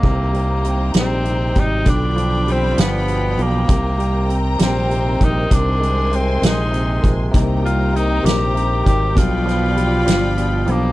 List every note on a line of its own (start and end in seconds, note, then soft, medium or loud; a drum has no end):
0.00 0.91 C2 medium
0.00 0.62 C3 medium
0.00 0.93 A#3 medium
0.00 1.84 D#4 medium
0.00 1.84 C5 medium
0.00 5.47 G5 medium
0.00 1.84 A#5 medium
0.00 kick medium
0.00 crash medium
0.33 0.93 G3 soft
0.33 closed hi-hat soft
0.64 1.23 C3 soft
0.64 closed hi-hat soft
0.94 1.52 A#1 medium
0.94 1.54 G3 soft
0.94 snare medium
0.94 closed hi-hat medium
0.99 1.61 C4 medium
1.24 1.84 C3 medium
1.24 closed hi-hat soft
1.55 1.85 G#1 medium
1.55 1.85 G3 soft
1.55 1.91 D#4 medium
1.55 kick medium
1.55 closed hi-hat soft
1.85 2.74 B1 medium
1.85 3.64 D3 medium
1.85 3.67 F4 medium
1.85 3.66 D5 medium
1.85 3.67 B5 medium
1.85 kick medium
1.85 closed hi-hat medium
1.89 2.53 D4 medium
2.16 2.76 F3 soft
2.16 closed hi-hat soft
2.47 3.65 G3 soft
2.47 closed hi-hat soft
2.51 2.82 C4 medium
2.78 3.35 G1 medium
2.78 3.37 F3 medium
2.78 3.44 B3 medium
2.78 snare medium
2.78 closed hi-hat medium
3.08 3.67 B2 soft
3.08 closed hi-hat soft
3.38 3.67 B1 medium
3.38 3.68 F3 soft
3.38 closed hi-hat soft
3.42 4.35 A#3 medium
3.68 4.56 C2 medium
3.68 4.27 C3 medium
3.68 9.13 D#3 medium
3.68 7.31 C5 medium
3.68 5.50 A#5 medium
3.68 kick loud
3.68 closed hi-hat medium
3.98 4.57 G3 soft
3.98 closed hi-hat soft
4.29 4.88 C3 soft
4.29 closed hi-hat soft
4.59 5.17 A#1 medium
4.59 5.19 G3 medium
4.59 snare loud
4.59 closed hi-hat medium
4.63 5.25 C4 medium
4.89 5.48 C3 medium
4.89 closed hi-hat soft
5.20 5.50 A#1 medium
5.20 5.50 G3 medium
5.20 5.55 D#4 medium
5.20 kick medium
5.20 closed hi-hat soft
5.50 6.38 C2 medium
5.50 6.10 C3 medium
5.50 7.31 G#5 medium
5.50 7.32 C6 medium
5.50 kick loud
5.50 closed hi-hat medium
5.54 6.16 D4 medium
5.80 6.41 G#3 soft
5.80 closed hi-hat soft
6.11 6.70 C3 soft
6.11 6.47 C4 medium
6.11 closed hi-hat soft
6.42 6.99 A#1 medium
6.42 7.01 G#3 soft
6.42 7.12 D#4 medium
6.42 snare loud
6.42 closed hi-hat medium
6.71 7.30 C3 medium
6.71 closed hi-hat soft
7.02 7.32 A#1 medium
7.02 7.32 G#3 soft
7.02 kick medium
7.02 closed hi-hat soft
7.31 8.21 C2 medium
7.31 7.92 C3 medium
7.31 7.94 C3 medium
7.31 7.93 A#3 medium
7.31 7.94 D#4 medium
7.31 7.97 G4 medium
7.31 7.95 A#4 medium
7.31 9.14 C5 medium
7.31 10.92 G5 medium
7.31 9.15 A#5 medium
7.31 kick loud
7.31 closed hi-hat medium
7.63 8.22 G3 soft
7.63 7.98 F4 medium
7.63 closed hi-hat soft
7.93 8.53 C3 soft
7.93 8.25 A#3 soft
7.93 8.24 D#4 medium
7.93 8.27 D#4 medium
7.93 8.23 G4 soft
7.93 8.24 A#4 soft
7.93 closed hi-hat soft
8.23 8.82 A#1 medium
8.23 8.86 C3 medium
8.23 8.83 G3 medium
8.23 8.86 A#3 medium
8.23 8.86 D#4 medium
8.23 8.85 G4 medium
8.23 8.86 G4 loud
8.23 8.86 A#4 medium
8.23 closed hi-hat medium
8.27 snare medium
8.54 9.14 C3 medium
8.54 closed hi-hat soft
8.84 9.15 G#1 medium
8.84 9.14 G3 soft
8.84 9.17 D#4 soft
8.84 9.16 G4 soft
8.84 9.20 G4 medium
8.84 9.17 A#4 soft
8.84 kick medium
8.84 closed hi-hat soft
9.15 10.03 B1 loud
9.15 10.35 B2 medium
9.15 9.77 B2 medium
9.15 9.76 F3 medium
9.15 9.80 G3 medium
9.15 9.77 D4 medium
9.15 10.92 F4 medium
9.15 9.77 F4 medium
9.15 10.72 F4 loud
9.15 9.79 G4 medium
9.15 10.92 D5 medium
9.15 10.92 B5 medium
9.15 kick loud
9.15 closed hi-hat medium
9.46 10.04 F3 medium
9.46 snare soft
9.46 closed hi-hat soft
9.75 10.06 F3 soft
9.75 10.92 G3 medium
9.75 10.06 D4 medium
9.75 10.06 F4 medium
9.75 10.06 G4 medium
9.75 closed hi-hat soft
10.06 10.64 G1 medium
10.06 10.68 B2 medium
10.06 10.65 F3 medium
10.06 10.68 F3 medium
10.06 10.72 G3 medium
10.06 10.67 D4 medium
10.06 10.68 F4 medium
10.06 10.67 G4 medium
10.06 snare loud
10.06 closed hi-hat medium
10.37 10.92 B2 medium
10.37 closed hi-hat soft
10.66 10.92 B1 medium
10.66 10.92 F3 medium
10.66 10.92 F3 soft
10.66 10.92 D4 soft
10.66 10.92 F4 soft
10.66 10.92 G4 medium
10.66 closed hi-hat soft
10.71 10.92 A#3 medium